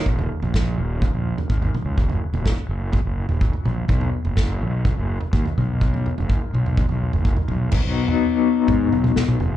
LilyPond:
<<
  \new Staff \with { instrumentName = "Clean electric guitar" } { \clef bass \time 4/4 \key ces \lydian \tempo 4 = 125 <ees, bes, ees>4 <ees, bes, ees>8 <ees, bes, ees>8 <ees, bes, ees>4 <ees, bes, ees>8 <ees, bes, ees>8 | <ges, des ges>4 <ges, des ges>8 <ges, des ges>8 <ges, des ges>4 <ges, des ges>8 <ges, des ges>8 | <b, fis b>4 <b, fis b>8 <b, fis b>8 <b, fis b>4 <b, fis b>8 <aes, ees aes>8 | <aes, ees aes>4 <aes, ees aes>8 <aes, ees aes>8 <aes, ees aes>4 <aes, ees aes>8 <aes, ees aes>8 |
<b, fis b dis' fis'>1 | }
  \new Staff \with { instrumentName = "Fingered electric bass" } { \clef bass \time 4/4 \key ces \lydian ees,,8 r16 bes,,8. ees,,8. bes,,8 r16 aes,,8 r16 des,16 | ges,,8 r16 ees,,8 r16 ges,,8. ges,,8 ees,,8 r16 bes,,8 | b,,8 r16 fis,,8. b,,8. fis,,8 r16 dis,16 r16 ces,8~ | ces,8. ges,,8 r16 ces,8. ces,8 ges,,8 r16 ces,8 |
b,,16 b,,8 r4 r16 aes,8 b,,8 b,,16 b,,16 f,,8 | }
  \new DrumStaff \with { instrumentName = "Drums" } \drummode { \time 4/4 <bd tomfh>16 tomfh8 tomfh16 <bd sn>4 <bd tomfh>8. tomfh16 bd16 tomfh16 <tomfh toml>8 | <bd tomfh>16 tomfh8 tomfh16 <bd sn>4 <bd tomfh>8. tomfh16 bd16 tomfh16 <tomfh toml>8 | <bd tomfh>16 tomfh8 tomfh16 <bd sn>4 <bd tomfh>8. tomfh16 bd16 tomfh16 <tomfh toml>8 | <bd tomfh>16 tomfh16 tomfh16 tomfh16 bd8 toml16 tomfh16 <bd tomfh>16 tomfh8 tomfh16 bd16 tomfh16 <tomfh toml>8 |
<cymc bd tomfh>8. tomfh16 r4 <bd tomfh>8 tomfh16 <tomfh toml>16 sn16 toml16 tomfh8 | }
>>